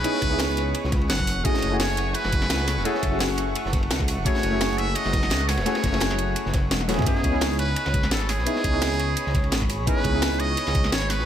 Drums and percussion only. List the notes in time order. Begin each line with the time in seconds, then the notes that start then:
0.04 closed hi-hat, ride
0.14 snare
0.22 kick, closed hi-hat, ride
0.39 snare, closed hi-hat, ride
0.57 snare, closed hi-hat, ride
0.75 closed hi-hat, ride
0.84 snare
0.92 kick, snare, closed hi-hat, ride
1.01 ride
1.10 snare, closed hi-hat, ride
1.19 kick, snare
1.27 snare, open hi-hat, ride
1.45 kick, closed hi-hat, ride
1.54 snare
1.62 closed hi-hat, ride
1.79 snare, closed hi-hat, ride
1.97 closed hi-hat, ride
2.14 closed hi-hat, ride
2.24 snare
2.32 kick, closed hi-hat, ride
2.42 snare
2.50 snare, closed hi-hat, ride
2.60 snare
2.67 snare, open hi-hat, ride
2.77 snare
2.85 closed hi-hat, ride
2.95 snare
3.03 kick, closed hi-hat, ride
3.19 snare, closed hi-hat, ride
3.37 snare, closed hi-hat, ride
3.55 closed hi-hat, ride
3.65 snare
3.73 kick, snare, closed hi-hat, ride
3.83 ride
3.90 snare, closed hi-hat, ride
4.00 kick, snare
4.08 snare, open hi-hat, ride
4.25 kick, closed hi-hat, ride
4.35 snare
4.43 closed hi-hat, ride
4.61 snare, closed hi-hat, ride
4.78 closed hi-hat, ride
4.95 closed hi-hat, ride
5.05 snare
5.12 kick, snare, closed hi-hat, ride
5.23 snare
5.30 snare, closed hi-hat, ride
5.41 snare
5.49 snare, open hi-hat, ride
5.57 snare, ride
5.66 snare, closed hi-hat, ride
5.75 snare, ride
5.83 kick, snare, closed hi-hat, ride
5.93 snare, ride
6.00 snare, closed hi-hat, ride
6.11 snare
6.18 closed hi-hat, ride
6.36 closed hi-hat, ride
6.46 snare
6.53 kick, snare, closed hi-hat, ride
6.71 snare, closed hi-hat, high tom, ride
6.81 snare, high tom
6.88 snare, open hi-hat, ride
6.93 snare, ride
6.98 snare, mid tom, ride
7.02 snare, ride
7.06 kick, closed hi-hat, ride
7.16 snare
7.24 kick, closed hi-hat, ride
7.41 snare, closed hi-hat, ride
7.59 closed hi-hat, ride
7.76 closed hi-hat, ride
7.86 snare
7.94 kick, closed hi-hat, ride
8.03 snare
8.11 snare, closed hi-hat, ride
8.21 snare
8.29 snare, open hi-hat, ride
8.39 snare
8.46 closed hi-hat, ride
8.55 snare
8.64 kick, closed hi-hat, ride
8.82 snare, closed hi-hat, ride
8.99 snare, closed hi-hat, ride
9.17 closed hi-hat, ride
9.26 snare
9.34 kick, snare, closed hi-hat, ride
9.44 ride
9.52 snare, closed hi-hat, ride
9.61 kick, snare
9.69 snare, open hi-hat, ride
9.87 kick, closed hi-hat, ride
9.96 snare
10.04 kick, closed hi-hat, ride
10.22 snare, closed hi-hat, ride
10.39 closed hi-hat, ride
10.57 closed hi-hat, ride
10.67 snare
10.75 kick, closed hi-hat, ride
10.84 snare
10.92 snare, closed hi-hat, ride
11.02 snare
11.10 snare, open hi-hat, ride
11.19 snare